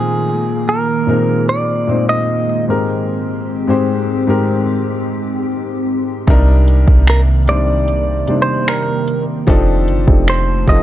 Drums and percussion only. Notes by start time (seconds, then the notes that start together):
6.27 kick, closed hi-hat
6.68 closed hi-hat
6.88 kick
7.07 finger snap
7.48 closed hi-hat
7.88 closed hi-hat
8.27 closed hi-hat
8.68 finger snap, closed hi-hat
9.08 closed hi-hat
9.48 kick, closed hi-hat
9.88 closed hi-hat
10.08 kick
10.28 finger snap
10.68 kick, closed hi-hat